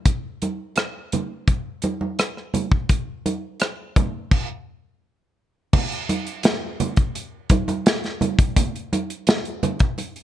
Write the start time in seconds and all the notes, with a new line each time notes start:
0.05 kick, closed hi-hat, muted conga
0.42 closed hi-hat, high conga
0.76 cross-stick, closed hi-hat, muted conga
1.12 closed hi-hat, muted conga, high conga, low conga
1.48 kick, closed hi-hat, muted conga
1.82 closed hi-hat, muted conga, high conga
2.01 high conga
2.19 cross-stick, closed hi-hat, muted conga
2.37 cross-stick
2.54 closed hi-hat, muted conga, high conga, low conga
2.72 kick
2.89 kick, closed hi-hat, muted conga
3.26 closed hi-hat, high conga
3.60 cross-stick, closed hi-hat
3.96 kick, closed hi-hat, high conga, low conga
4.31 kick, crash
5.73 kick, crash, muted conga, low conga
5.92 closed hi-hat
6.09 closed hi-hat, high conga
6.27 closed hi-hat
6.43 snare, closed hi-hat, muted conga
6.80 closed hi-hat, high conga, low conga
6.96 kick, closed hi-hat
7.15 closed hi-hat
7.49 kick, closed hi-hat, muted conga, high conga
7.68 closed hi-hat, high conga
7.86 snare, closed hi-hat
8.04 snare, closed hi-hat
8.21 closed hi-hat, muted conga, high conga, low conga
8.39 kick, closed hi-hat
8.56 kick, closed hi-hat, muted conga, low conga
8.76 closed hi-hat
8.93 closed hi-hat, muted conga, high conga
9.10 closed hi-hat
9.27 snare, closed hi-hat, muted conga
9.45 closed hi-hat
9.63 closed hi-hat, muted conga, high conga, low conga
9.79 kick, closed hi-hat
9.98 closed hi-hat, muted conga
10.16 closed hi-hat